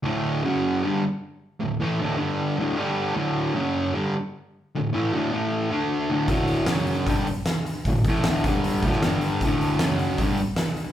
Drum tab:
HH |----------------|----------------|----------------|----------------|
SD |----------------|----------------|----------------|----------------|
BD |----------------|----------------|----------------|----------------|

HH |o-o-o-o-o-o-o-o-|o-o-o-o-o-o-o-o-|o-o-o-o-o-o-o-o-|
SD |----o-------o---|----o------oo---|----o-------o---|
BD |o-------o-------|o-o---o---o-----|o-------o-------|